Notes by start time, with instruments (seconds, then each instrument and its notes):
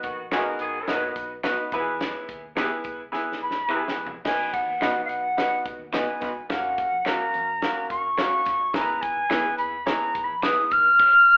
Already playing: grand piano B3 D#4 F#4 B4
0.03 fingered electric bass A#1, horn section D#3 B3 F#4, kick, closed hi-hat
0.31 horn section A#3 F#4 A#4, clean electric guitar B3 D#4 F#4 B4, grand piano B3 C#4 F#4 G#4, finger snap, snare, closed hi-hat
0.39 grand piano D#4
0.59 fingered electric bass G#1, horn section D#3 B3 G#4, closed hi-hat
0.88 fingered electric bass F#1, grand piano B3 D#4 F#4 A#4, snare, closed hi-hat
0.95 grand piano B4
1.16 fingered electric bass B1, kick, closed hi-hat
1.43 clean electric guitar B3 D#4 F#4 B4, grand piano B3 D#4 F#4 B4, finger snap, snare, closed hi-hat
1.72 fingered electric bass E2, grand piano B3 E4 F#4 B4, kick, closed hi-hat
1.80 grand piano G#4
2.01 snare, closed hi-hat
2.29 fingered electric bass D#2, kick, closed hi-hat
2.56 clean electric guitar B3 E4 G#4 B4, grand piano B3 E4 G4 B4, finger snap, snare, closed hi-hat
2.64 grand piano G#4
2.84 fingered electric bass C#2, kick, closed hi-hat
3.12 grand piano B3 E4 G#4 B4, snare
3.32 snare
3.40 fingered electric bass B1, flute B5
3.51 snare
3.68 clean electric guitar B3 E4 G#4 B4, grand piano B3 E4 G4 B4, finger snap
3.76 grand piano G#4
3.88 snare
3.97 fingered electric bass A#1
4.07 floor tom
4.25 fingered electric bass B1, grand piano B3 D#4 F#4 A#4, flute G#5, kick, snare, crash
4.32 grand piano B4
4.53 flute F#5, kick, closed hi-hat
4.67 fingered electric bass D#2
4.80 fingered electric bass A#1, clean electric guitar B3 D#4 F#4 B4, grand piano B3 D#4 F#4 B4, finger snap, snare, closed hi-hat
5.05 flute F5 F#5
5.09 fingered electric bass B1, closed hi-hat
5.37 grand piano B3 D#4 F#4 B4, snare, closed hi-hat
5.65 fingered electric bass C#2, kick, closed hi-hat
5.79 fingered electric bass D#2
5.92 clean electric guitar B3 D#4 F#4 B4, grand piano B3 D#4 F#4 B4, flute G#5, finger snap, snare, closed hi-hat
6.21 fingered electric bass C#2, clean electric guitar B3 D#4 F#4 B4, kick, snare, closed hi-hat
6.49 fingered electric bass F#1, grand piano A#3 C#4 F#4 A#4, flute F#5, kick, snare, closed hi-hat
6.78 kick, closed hi-hat
6.91 fingered electric bass A#1
7.05 fingered electric bass C#2, clean electric guitar A#3 C#4 F#4 A#4, grand piano A#3 C#4 F#4 A#4, flute A#5, finger snap, snare, closed hi-hat
7.34 fingered electric bass F#2, closed hi-hat
7.62 grand piano A#3 C#4 F#4 A#4, snare, closed hi-hat
7.90 fingered electric bass F#1, flute C#6, kick, closed hi-hat
8.04 fingered electric bass G#1
8.17 grand piano A#3 C#4 F#4 C#5, clean electric guitar A#3 C#4 F#4 A#4, finger snap, snare, closed hi-hat
8.46 fingered electric bass F#1, kick, snare, closed hi-hat
8.60 fingered electric bass D#1
8.73 fingered electric bass E1, grand piano B3 E4 G#4 A#4, flute A#5, kick, snare, closed hi-hat
8.81 grand piano B4
9.01 flute G#5, kick, closed hi-hat
9.15 fingered electric bass G#1
9.29 fingered electric bass E1, grand piano B3 E4 G#4 B4, clean electric guitar B3 E4 G#4 B4, finger snap, snare, closed hi-hat
9.58 fingered electric bass F#1, flute B5, closed hi-hat
9.86 grand piano B3 E4 G#4 C#5, flute A#5, snare, closed hi-hat
10.15 fingered electric bass G#1, kick, closed hi-hat
10.24 flute B5
10.29 fingered electric bass A#1
10.42 grand piano B3 E4 G#4 B4, clean electric guitar B3 E4 G#4 B4, flute D#6, finger snap, snare, closed hi-hat
10.71 fingered electric bass G#1, flute F6, kick, closed hi-hat
10.85 fingered electric bass C2
10.99 kick, crash